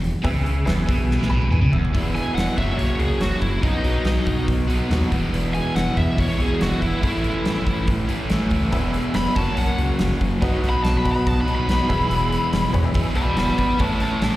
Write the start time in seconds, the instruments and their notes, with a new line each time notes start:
0.02 sub bass E1, overdriven electric guitar E2, open hi-hat
0.23 sub bass C#2, overdriven electric guitar C#3, honky-tonk piano G#4 B4 E5, kick, open hi-hat
0.46 open hi-hat
0.65 sub bass E1, overdriven electric guitar E2, honky-tonk piano G#4 B4 E5, snare, open hi-hat
0.87 sub bass B1, overdriven electric guitar B2, kick, open hi-hat
1.11 snare
1.19 sub bass A1, overdriven electric guitar A2, snare
1.30 sub bass B1, overdriven electric guitar B2, honky-tonk piano B5
1.42 high tom
1.51 sub bass E2, overdriven electric guitar E3, honky-tonk piano G#5, mid tom
1.61 sub bass C#2, overdriven electric guitar C#3
1.72 sub bass E1, overdriven electric guitar E2, honky-tonk piano E5, floor tom
1.85 floor tom
1.94 sub bass E1, steel-string acoustic guitar E2 B2 E3 G#3 B3 G#4, overdriven electric guitar E4, kick, open hi-hat
2.15 steel-string acoustic guitar E3 G#3 B3 G#4, lead electric guitar G#5, open hi-hat
2.35 sub bass E1, steel-string acoustic guitar E2 B2 E3 G#3 B3 G#4, lead electric guitar F#5, snare, open hi-hat
2.56 sub bass F#1, overdriven electric guitar F#2, steel-string acoustic guitar C#3 F#3 A#3 C#4 F#4, lead electric guitar E5, kick, open hi-hat
2.60 steel-string acoustic guitar F#2
2.78 sub bass B1, lead electric guitar C#5, open hi-hat
2.99 sub bass C#2, steel-string acoustic guitar F#3 A#3 C#4 F#4, lead electric guitar G#4, open hi-hat
3.20 sub bass F#1, steel-string acoustic guitar F#2 C#3 F#3 A#3 C#4 F#4, lead electric guitar F#4, snare, open hi-hat
3.41 sub bass F#1, steel-string acoustic guitar F#3 A#3 F#4, lead electric guitar E4, kick, open hi-hat
3.63 sub bass B1, steel-string acoustic guitar B2 F#3 B3 D#4 F#4, lead electric guitar D#4, kick, open hi-hat
3.84 sub bass B1, steel-string acoustic guitar B3 D#4 F#4, open hi-hat
4.05 sub bass B1, steel-string acoustic guitar B2 F#3 B3 D#4 F#4, snare, open hi-hat
4.26 sub bass B1, kick, open hi-hat
4.48 sub bass B1, steel-string acoustic guitar F#3 B3 D#4 F#4, kick, open hi-hat
4.69 sub bass B1, overdriven electric guitar B2 F#3, steel-string acoustic guitar D#4 F#4, open hi-hat
4.73 steel-string acoustic guitar B3
4.89 sub bass D#2, steel-string acoustic guitar B2 F#3 B3 D#4 F#4, snare, open hi-hat
5.11 sub bass E1, overdriven electric guitar E2 B2, steel-string acoustic guitar E3 G#3 B3 E4, kick, open hi-hat
5.33 sub bass E1, steel-string acoustic guitar E2 B2 E3 G#3 B3 E4, open hi-hat
5.54 steel-string acoustic guitar E3 G#3 B3 E4, lead electric guitar G#5, open hi-hat
5.75 sub bass E1, steel-string acoustic guitar E2 B2 E3 G#3 B3 E4, lead electric guitar F#5, snare, open hi-hat
5.97 sub bass E2, lead electric guitar E5, kick, open hi-hat
6.17 sub bass A1, overdriven electric guitar E2 B2, steel-string acoustic guitar E3 G#3 B3 E4, lead electric guitar C#5, kick, open hi-hat
6.39 sub bass B1, overdriven electric guitar E2 B2, steel-string acoustic guitar E3 G#3 B3 E4, lead electric guitar G#4, open hi-hat
6.60 sub bass E1, steel-string acoustic guitar E2 B2 E3 G#3 B3 E4, lead electric guitar F#4, snare, open hi-hat
6.82 sub bass E1, steel-string acoustic guitar E3 G#3 B3, lead electric guitar E4, kick, open hi-hat
7.02 sub bass A1, steel-string acoustic guitar A2 E3 B3 C#4 E4, overdriven electric guitar A3, lead electric guitar E4, kick, open hi-hat
7.24 sub bass A1, steel-string acoustic guitar B3 C#4 E4, open hi-hat
7.45 sub bass A1, steel-string acoustic guitar A2 E3 B3 C#4 E4, snare, open hi-hat
7.66 sub bass A1, kick, open hi-hat
7.86 sub bass A1, steel-string acoustic guitar E3 B3 C#4 E4, kick, open hi-hat
8.07 sub bass A1, overdriven electric guitar A2 E3 A3, steel-string acoustic guitar B3 C#4 E4, open hi-hat
8.29 sub bass A1, steel-string acoustic guitar A2 E3 B3 C#4 E4, overdriven electric guitar A3, snare, open hi-hat
8.50 sub bass C#2, steel-string acoustic guitar B3 C#4 E4, kick, open hi-hat
8.72 sub bass E1, steel-string acoustic guitar E2 B2 E3 G#3 B3 G#4, overdriven electric guitar E4, honky-tonk piano G#4 B4 E5, kick, open hi-hat
8.94 steel-string acoustic guitar E3 G#3 B3 G#4, open hi-hat
9.14 sub bass E1, steel-string acoustic guitar E2 B2 E3 G#3 B3 G#4, lead electric guitar B5, snare, open hi-hat
9.36 sub bass F#1, steel-string acoustic guitar F#2 C#3 F#3 A#3 C#4 F#4, honky-tonk piano F#4 A#4 C#5, lead electric guitar A5, kick, open hi-hat
9.57 sub bass B1, lead electric guitar F#5, open hi-hat
9.78 sub bass C#2, steel-string acoustic guitar F#3 A#3 C#4 F#4, open hi-hat
9.99 sub bass F#1, steel-string acoustic guitar F#2 C#3 F#3 A#3 C#4 F#4, snare, open hi-hat
10.19 sub bass F#1, steel-string acoustic guitar F#3 A#3 C#4 F#4, kick, open hi-hat
10.40 sub bass B1, steel-string acoustic guitar B2 F#3 B3 D#4 F#4, honky-tonk piano F#4 B4 D#5, kick, open hi-hat
10.63 sub bass B1, steel-string acoustic guitar B3 D#4 F#4, snare, open hi-hat
10.70 lead electric guitar B5
10.83 sub bass B1, steel-string acoustic guitar B2 F#3 B3 D#4 F#4, lead electric guitar A5, snare, open hi-hat
10.97 lead electric guitar B5
11.04 sub bass B1, honky-tonk piano F#4 B4 D#5, kick, open hi-hat
11.12 honky-tonk piano F#4 B4 D#5, lead electric guitar B5
11.26 sub bass B1, steel-string acoustic guitar F#3 B3 D#4 F#4, lead electric guitar A5, kick, open hi-hat
11.41 lead electric guitar B5
11.47 sub bass B1, overdriven electric guitar B2 F#3, steel-string acoustic guitar B3 D#4 F#4, open hi-hat
11.55 lead electric guitar B5
11.68 sub bass B1, steel-string acoustic guitar B2 F#3 B3 D#4 F#4, snare, open hi-hat
11.88 sub bass E1, overdriven electric guitar E2 B2 E4, steel-string acoustic guitar E3 G#3 B3 G#4, honky-tonk piano G#4 B4 E5, kick, open hi-hat
12.10 sub bass E1, steel-string acoustic guitar E2 B2 E3 G#3 B3 G#4, open hi-hat
12.30 steel-string acoustic guitar E3 G#3 B3 G#4, snare, open hi-hat
12.52 sub bass E1, steel-string acoustic guitar E2 B2 E3 G#3 B3 G#4, snare, open hi-hat
12.73 sub bass E2, honky-tonk piano G#4 B4 C#5, kick, open hi-hat
12.84 honky-tonk piano G#4 B4 E5
12.94 sub bass A1, overdriven electric guitar E2 B2 E4, steel-string acoustic guitar E3 G#3 B3 G#4, kick, open hi-hat
13.14 sub bass B1, overdriven electric guitar E2 B2 E4, steel-string acoustic guitar G#3 B3 G#4, lead electric guitar D5 B5, open hi-hat
13.18 steel-string acoustic guitar E3
13.37 sub bass E1, steel-string acoustic guitar E2 B2 E3 G#3 B3 G#4, lead electric guitar D5 B5, snare, open hi-hat
13.58 sub bass G#1, steel-string acoustic guitar E3 G#3 B3 G#4, lead electric guitar D5 B5, kick, open hi-hat
13.79 sub bass A1, steel-string acoustic guitar A2 E3 B3 C#4 E4, overdriven electric guitar A3, honky-tonk piano A4 B4 C#5, lead electric guitar C#5 A5, kick, open hi-hat
14.00 sub bass A1, steel-string acoustic guitar B3 C#4 E4, lead electric guitar C#5 A5, snare, open hi-hat
14.21 sub bass A1, steel-string acoustic guitar A2 E3 B3 C#4 E4, lead electric guitar C#5 A5, snare, open hi-hat